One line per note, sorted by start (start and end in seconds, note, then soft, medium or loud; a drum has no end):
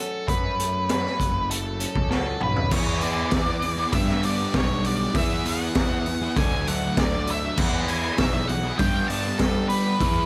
0.00 0.29 F#3 medium
0.00 0.58 A3 medium
0.00 0.88 C#4 medium
0.00 1.20 F#4 medium
0.00 0.28 A4 medium
0.28 1.81 F#2 medium
0.28 1.06 F#2 medium
0.28 0.89 B4 loud
0.28 kick loud
0.28 closed hi-hat medium
0.59 1.49 A3 medium
0.59 closed hi-hat medium
0.89 1.79 C#4 medium
0.89 1.50 B4 medium
0.89 snare loud
0.89 closed hi-hat medium
1.06 snare soft
1.19 1.85 F#1 medium
1.19 2.72 F#3 medium
1.19 kick medium
1.19 closed hi-hat medium
1.50 2.72 A3 medium
1.50 2.10 A4 medium
1.50 closed hi-hat medium
1.80 2.40 C#4 medium
1.80 closed hi-hat medium
1.95 2.35 C#2 medium
1.95 kick medium
2.11 2.72 F#4 medium
2.11 2.43 A4 medium
2.11 snare soft
2.41 2.68 B1 medium
2.41 2.72 C#4 medium
2.41 2.74 B4 medium
2.41 mid tom medium
2.56 floor tom medium
2.70 3.24 E2 loud
2.70 3.00 E3 medium
2.70 3.02 B3 loud
2.70 3.02 E4 loud
2.70 3.03 G#4 loud
2.70 3.00 C#5 loud
2.70 kick loud
2.70 crash loud
3.01 3.31 E3 medium
3.01 3.32 B3 medium
3.01 3.33 E4 medium
3.01 3.34 G#4 medium
3.01 3.93 D5 loud
3.01 open hi-hat medium
3.31 3.85 E2 loud
3.31 3.62 E3 medium
3.31 3.49 B3 loud
3.31 3.48 E4 medium
3.31 3.46 G#4 loud
3.31 kick loud
3.31 snare loud
3.31 open hi-hat medium
3.47 3.62 B3 medium
3.47 3.63 E4 medium
3.47 3.63 G#4 medium
3.62 muted distorted electric guitar stroke soft
3.62 open hi-hat medium
3.78 3.93 B3 medium
3.78 3.92 E4 medium
3.78 3.92 G#4 medium
3.92 4.45 G2 loud
3.92 4.23 G3 loud
3.92 4.10 B3 loud
3.92 4.09 D4 loud
3.92 4.07 G4 loud
3.92 4.24 E5 loud
3.92 kick loud
3.92 open hi-hat medium
4.08 4.24 B3 medium
4.08 4.25 D4 medium
4.08 4.26 G4 medium
4.08 snare soft
4.23 4.53 G3 medium
4.23 4.41 B3 medium
4.23 4.40 D4 medium
4.23 4.38 G4 medium
4.23 4.56 D5 loud
4.23 open hi-hat medium
4.39 4.54 B3 medium
4.39 4.54 D4 medium
4.39 4.55 G4 medium
4.54 5.06 B1 loud
4.54 4.84 G3 medium
4.54 4.72 B3 loud
4.54 4.70 D4 medium
4.54 4.69 G4 loud
4.54 4.86 C#5 medium
4.54 kick loud
4.54 snare loud
4.54 open hi-hat medium
4.70 4.85 B3 medium
4.70 4.86 D4 medium
4.70 4.87 G4 medium
4.84 5.14 G3 medium
4.84 5.14 B3 medium
4.84 5.15 D4 medium
4.84 5.15 G4 medium
4.84 5.16 D5 loud
4.84 open hi-hat medium
4.98 5.14 B3 medium
4.98 5.13 D4 medium
4.98 5.13 G4 medium
5.14 5.67 E2 loud
5.14 5.43 E3 medium
5.14 5.44 B3 loud
5.14 5.45 E4 loud
5.14 5.46 G#4 loud
5.14 5.47 E5 loud
5.14 kick loud
5.14 open hi-hat medium
5.44 5.74 E3 medium
5.44 5.75 B3 medium
5.44 5.75 E4 medium
5.44 5.77 G#4 loud
5.44 6.38 F#5 loud
5.44 open hi-hat medium
5.75 6.28 E2 loud
5.75 6.06 E3 loud
5.75 5.92 B3 medium
5.75 5.91 E4 loud
5.75 5.89 G#4 loud
5.75 kick loud
5.75 snare loud
5.75 open hi-hat medium
5.91 6.06 B3 medium
5.91 6.07 E4 medium
5.91 6.07 G#4 medium
6.06 muted distorted electric guitar stroke medium
6.06 open hi-hat medium
6.22 6.37 B3 medium
6.22 6.36 E4 medium
6.22 6.35 G#4 medium
6.36 6.88 D2 loud
6.36 6.82 D3 loud
6.36 6.66 F#3 loud
6.36 6.54 A3 loud
6.36 6.52 D4 loud
6.36 6.51 A4 loud
6.36 6.68 G#5 loud
6.36 kick loud
6.36 open hi-hat medium
6.52 6.67 A3 medium
6.52 6.68 D4 medium
6.52 6.69 A4 medium
6.67 6.98 F#3 medium
6.67 6.84 A3 medium
6.67 6.82 D4 medium
6.67 6.81 A4 medium
6.67 6.99 F#5 loud
6.67 open hi-hat medium
6.82 6.98 A3 medium
6.82 6.99 D4 medium
6.82 7.00 A4 medium
6.97 7.49 D2 loud
6.97 7.43 D3 loud
6.97 7.26 F#3 medium
6.97 7.15 A3 loud
6.97 7.14 D4 loud
6.97 7.27 D5 medium
6.97 kick loud
6.97 snare loud
6.97 open hi-hat medium
7.01 7.12 A4 loud
7.13 7.27 A3 medium
7.13 7.28 D4 medium
7.13 7.29 A4 medium
7.27 7.56 F#3 medium
7.27 7.57 A3 medium
7.27 7.57 D4 medium
7.27 7.58 A4 medium
7.27 7.58 E5 loud
7.27 open hi-hat medium
7.43 7.58 A3 medium
7.43 7.57 D4 medium
7.43 7.56 A4 medium
7.57 8.10 E2 medium
7.57 7.87 E3 loud
7.57 7.88 B3 loud
7.57 7.89 E4 loud
7.57 7.87 F#5 loud
7.57 kick loud
7.57 crash loud
7.62 7.90 G#4 loud
7.88 8.17 E3 medium
7.88 8.18 B3 medium
7.88 8.19 E4 medium
7.88 8.20 G#4 medium
7.88 8.17 G#5 loud
7.88 open hi-hat medium
8.18 8.71 B1 loud
8.18 8.49 E3 loud
8.18 8.35 B3 loud
8.18 8.34 E4 loud
8.18 8.32 G#4 loud
8.18 8.50 E5 loud
8.18 kick loud
8.18 snare loud
8.18 open hi-hat medium
8.34 8.49 B3 medium
8.34 8.49 E4 medium
8.34 8.50 G#4 medium
8.48 8.77 F#5 loud
8.48 muted distorted electric guitar stroke soft
8.48 open hi-hat medium
8.64 8.79 B3 medium
8.64 8.78 E4 medium
8.64 8.78 G#4 medium
8.78 9.31 G2 loud
8.78 9.08 G3 loud
8.78 8.95 B3 loud
8.78 8.94 D4 loud
8.78 8.92 G4 loud
8.78 9.07 G5 loud
8.78 kick loud
8.78 open hi-hat medium
8.94 9.09 B3 medium
8.94 9.10 D4 medium
8.94 9.11 G4 medium
9.08 9.39 G3 medium
9.08 9.26 B3 medium
9.08 9.26 D4 medium
9.08 9.40 A5 loud
9.08 open hi-hat medium
9.12 9.23 G4 medium
9.25 9.40 B3 medium
9.25 9.41 D4 medium
9.25 9.42 G4 medium
9.38 9.92 G3 loud
9.38 9.68 G3 loud
9.38 9.57 B3 medium
9.38 9.56 D4 loud
9.38 9.68 A4 medium
9.38 kick loud
9.38 snare loud
9.38 open hi-hat medium
9.43 9.54 G4 loud
9.55 9.69 B3 medium
9.55 9.70 D4 medium
9.55 9.71 G4 medium
9.68 9.98 G3 medium
9.68 9.99 B3 medium
9.68 9.99 D4 medium
9.68 10.26 B4 loud
9.68 open hi-hat medium
9.73 10.00 G4 medium
9.85 10.00 B3 medium
9.85 9.99 D4 medium
9.85 9.99 G4 medium
9.99 10.26 E2 loud
9.99 10.26 E3 loud
9.99 10.26 B3 loud
9.99 10.26 E4 loud
9.99 10.26 G#4 loud
9.99 kick loud
9.99 open hi-hat medium